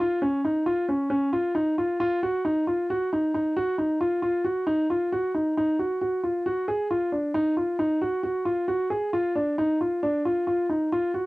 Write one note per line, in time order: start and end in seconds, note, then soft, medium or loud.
0.00 0.18 F4 medium
0.22 0.40 C#4 medium
0.45 0.62 D#4 medium
0.66 0.84 F4 medium
0.89 1.07 C#4 medium
1.10 1.28 C#4 medium
1.33 1.51 F4 medium
1.55 1.73 D#4 medium
1.78 1.96 F4 medium
2.00 2.18 F4 medium
2.23 2.41 F#4 medium
2.45 2.63 D#4 medium
2.67 2.85 F4 medium
2.90 3.08 F#4 medium
3.13 3.30 D#4 medium
3.34 3.52 D#4 medium
3.57 3.75 F#4 medium
3.78 3.97 D#4 medium
4.01 4.19 F4 medium
4.22 4.41 F4 medium
4.44 4.63 F#4 medium
4.67 4.85 D#4 medium
4.90 5.08 F4 medium
5.12 5.31 F#4 medium
5.35 5.53 D#4 medium
5.58 5.75 D#4 medium
5.79 5.97 F#4 medium
6.02 6.20 F#4 medium
6.24 6.42 F4 medium
6.46 6.64 F#4 medium
6.68 6.86 G#4 medium
6.91 7.09 F4 medium
7.12 7.31 D4 medium
7.34 7.53 D#4 medium
7.57 7.75 F4 medium
7.79 7.98 D#4 medium
8.01 8.20 F#4 medium
8.23 8.42 F#4 medium
8.45 8.64 F4 medium
8.68 8.87 F#4 medium
8.90 9.09 G#4 medium
9.13 9.32 F4 medium
9.35 9.54 D4 medium
9.58 9.76 D#4 medium
9.81 9.99 F4 medium
10.03 10.21 D4 medium
10.25 10.43 F4 medium
10.47 10.65 F4 medium
10.69 10.88 D#4 medium
10.92 11.10 F4 medium
11.14 11.26 F#4 medium